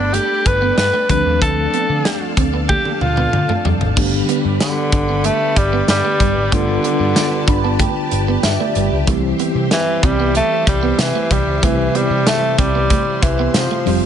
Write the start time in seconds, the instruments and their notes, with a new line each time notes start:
Already playing: picked electric bass G1, tine electric piano G3 A3 B3 D4, clean electric guitar B3, tenor saxophone D4, string machine A4 D5 G5 B5
0.14 clean electric guitar A3, tenor saxophone G4, closed hi-hat
0.46 picked electric bass G1, tenor saxophone B4, muted clean electric guitar stroke, kick, closed hi-hat
0.62 clean electric guitar B3
0.78 picked electric bass G2, tenor saxophone B4, muted clean electric guitar stroke, snare, closed hi-hat
0.94 clean electric guitar A3
1.09 picked electric bass D2, tine electric piano F3 A3 C4 D4, clean electric guitar G3, string machine A4 F5 A5, tenor saxophone B4, kick, closed hi-hat
1.26 picked electric bass D#2
1.42 picked electric bass D2, clean electric guitar A3, tenor saxophone A4, kick, closed hi-hat
1.74 clean electric guitar B3, closed hi-hat
1.89 picked electric bass D3, muted clean electric guitar stroke
2.05 muted clean electric guitar stroke, snare, closed hi-hat
2.37 picked electric bass D2, clean electric guitar C4, kick, closed hi-hat
2.54 clean electric guitar B3
2.69 clean electric guitar A3, tenor saxophone G4, kick, high tom
2.85 high tom
2.94 tenor saxophone G4
3.01 picked electric bass D2, tenor saxophone F4, muted clean electric guitar stroke, mid tom
3.17 clean electric guitar B3, mid tom
3.33 picked electric bass D3, muted clean electric guitar stroke, mid tom
3.49 clean electric guitar A3, mid tom
3.65 picked electric bass F2, clean electric guitar G3, floor tom
3.81 picked electric bass G#1, floor tom
3.96 picked electric bass G1, tine electric piano D3 G3 B3 D4 G4, clean electric guitar A3, string machine G4 B4 D5 B5, kick, crash
4.29 clean electric guitar B3, closed hi-hat
4.45 picked electric bass G2, muted clean electric guitar stroke
4.61 tenor saxophone D3, muted clean electric guitar stroke, snare, closed hi-hat, tambourine
4.92 picked electric bass G1, clean electric guitar D4, kick, closed hi-hat
5.09 clean electric guitar B3
5.24 clean electric guitar A3, tenor saxophone A3, closed hi-hat
5.56 picked electric bass G1, tenor saxophone G3, muted clean electric guitar stroke, kick, closed hi-hat
5.73 clean electric guitar B3
5.88 picked electric bass G2, tenor saxophone G3, snare, closed hi-hat, tambourine
6.05 clean electric guitar A3
6.20 picked electric bass G1, clean electric guitar G3, kick, closed hi-hat
6.36 picked electric bass G#1
6.51 picked electric bass G1, tine electric piano D3 G3 B3 D4 F4, tenor saxophone D3, clean electric guitar A3, string machine A5, kick, closed hi-hat
6.84 clean electric guitar B3, closed hi-hat
7.00 picked electric bass G2, muted clean electric guitar stroke
7.16 muted clean electric guitar stroke, snare, closed hi-hat, tambourine
7.48 picked electric bass G1, clean electric guitar D4, tine electric piano B5, kick, closed hi-hat
7.64 clean electric guitar B3, tine electric piano A5
7.79 clean electric guitar A3, tine electric piano G5, kick, closed hi-hat
8.11 picked electric bass G1, muted clean electric guitar stroke, closed hi-hat
8.28 clean electric guitar B3
8.43 picked electric bass G2, tine electric piano E5, muted clean electric guitar stroke, snare, closed hi-hat, tambourine
8.60 clean electric guitar A3, tine electric piano D5
8.75 picked electric bass G1, clean electric guitar G3, closed hi-hat
8.92 picked electric bass C#2
9.06 picked electric bass C2, tine electric piano E3 G3 C4 E4 G4, clean electric guitar A3, string machine C5 E5 C6, kick, closed hi-hat
9.39 clean electric guitar B3, closed hi-hat
9.55 picked electric bass C3, muted clean electric guitar stroke
9.71 tenor saxophone E3, muted clean electric guitar stroke, snare, closed hi-hat, tambourine
10.03 picked electric bass C2, tenor saxophone G3, clean electric guitar C4, kick, closed hi-hat
10.20 clean electric guitar B3
10.35 clean electric guitar A3, tenor saxophone A3, closed hi-hat
10.67 picked electric bass C2, tenor saxophone G3, muted clean electric guitar stroke, kick, closed hi-hat
10.83 clean electric guitar B3
10.98 picked electric bass C3, tenor saxophone E3, muted clean electric guitar stroke, snare, closed hi-hat, tambourine
11.15 clean electric guitar A3
11.31 picked electric bass C2, clean electric guitar G3, tenor saxophone G3, kick, closed hi-hat
11.47 picked electric bass C#2
11.62 picked electric bass C2, tine electric piano C3 G3 C4 E4 G4, tenor saxophone E3, clean electric guitar A3, kick, closed hi-hat
11.95 tenor saxophone G3, clean electric guitar B3, closed hi-hat
12.10 picked electric bass C3, muted clean electric guitar stroke
12.27 tenor saxophone A3, muted clean electric guitar stroke, snare, closed hi-hat, tambourine
12.58 picked electric bass C2, tenor saxophone G3, clean electric guitar C4, kick, closed hi-hat
12.75 clean electric guitar B3
12.90 clean electric guitar A3, kick, closed hi-hat
13.23 picked electric bass C2, tenor saxophone E3, muted clean electric guitar stroke, kick, closed hi-hat
13.39 clean electric guitar B3
13.54 picked electric bass C3, tenor saxophone F3, muted clean electric guitar stroke, snare, closed hi-hat, tambourine
13.71 clean electric guitar A3
13.85 picked electric bass F1, tine electric piano F3 G3 C4 F4 G4, clean electric guitar G3, string machine G4 F5, open hi-hat
14.02 picked electric bass F#1